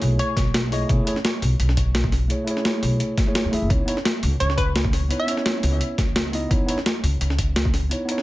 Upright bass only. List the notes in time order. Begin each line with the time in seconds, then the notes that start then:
0.02 B1
0.37 B1
0.90 B1
1.42 B1
1.60 B1
2.83 B1
3.44 E2
3.53 E2
3.62 F#1
3.70 C#2
4.23 C#2
4.40 C#2
5.63 C#2
5.98 C#2
6.51 C#2
7.03 C#2
7.21 C#2